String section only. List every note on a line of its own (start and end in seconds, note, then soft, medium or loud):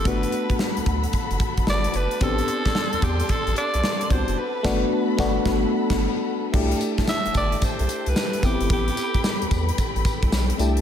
0.05 2.19 A4 medium
0.05 2.19 F#5 medium
0.05 6.50 A5 medium
0.05 2.19 B5 medium
2.21 4.35 A4 medium
2.21 4.35 D5 medium
2.21 4.35 C6 medium
4.37 6.51 A4 medium
4.37 6.51 F#5 medium
4.37 6.51 B5 medium
6.53 10.81 A4 medium
6.53 8.41 E5 medium
6.53 8.41 G5 medium
6.53 8.41 A5 medium
8.43 10.57 B4 medium
8.43 10.81 G5 medium
8.43 10.57 B5 medium
10.59 10.81 E5 medium
10.59 10.81 A5 medium